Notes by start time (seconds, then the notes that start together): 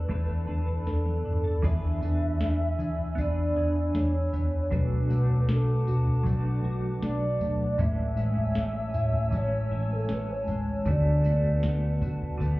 Already playing: B3 D4 A4 B4 D5 A5 B5 E6
0.09 E2 E3 A3 D4 A4 B4, kick, floor tom
0.29 B3
0.47 E2 D4 A4 B4
0.67 A4, floor tom
0.86 E2 D4 A4, snare
1.05 B3, high tom
1.25 E2 D4, mid tom
1.44 A4, floor tom
1.62 E2 E3 B3 D4 G#4 B4 E5 G#5 B5 E6, kick, floor tom, crash, tambourine
2.01 E2 B3 D4 G#4 B4, tambourine
2.22 floor tom
2.41 E2 D4, snare, tambourine
2.79 E3 G#4, floor tom, tambourine
2.99 floor tom
3.15 E2 B3 D4 D5, kick, tambourine
3.21 G#4 B4
3.56 E2 G#4
3.94 E2 D4 C#5, snare, tambourine
4.33 E2 B3, floor tom, tambourine
4.71 B1 B2 F#3 A3 D4 F#4 B4 F#5 A5 D6, kick, floor tom, tambourine
5.10 B1 A3 D4 F#4, tambourine
5.30 floor tom
5.49 B1 D4 A4, snare, tambourine
5.87 B2 F#4, floor tom, tambourine
6.07 floor tom
6.24 B1 F#3 A3 D4, kick, tambourine
6.29 D4 F#4
6.64 B1 F#4
7.02 B1 D4 D5, snare, tambourine
7.41 B1 A3, floor tom, tambourine
7.78 A1 A2 E3 G#3 C#4 E4 C#5 E5 G#5 A5 E6, kick, floor tom, tambourine
8.17 A1 G#3 C#4 E4, tambourine
8.36 floor tom
8.55 A1 C#4, snare, tambourine
8.94 A2 E4, floor tom, tambourine
9.13 floor tom
9.31 A1 E3 G#3 C#4, kick, tambourine
9.36 C#4 E4 C#5
9.71 A1 E4
9.92 A4
10.09 A1 C#4 B4, snare, tambourine
10.31 C#5
10.47 A1 G#3, floor tom, tambourine
10.86 D2 D3 A3 B3 F#4 B4 D5 F#5, kick, floor tom, tambourine
11.24 D2 A3 B3 F#4, tambourine
11.28 A3
11.44 floor tom
11.63 D2 B3, snare, tambourine
12.02 D3 F#4, kick, tambourine
12.22 floor tom
12.38 D2 D3 A3 B3, kick, tambourine
12.43 B3 F#4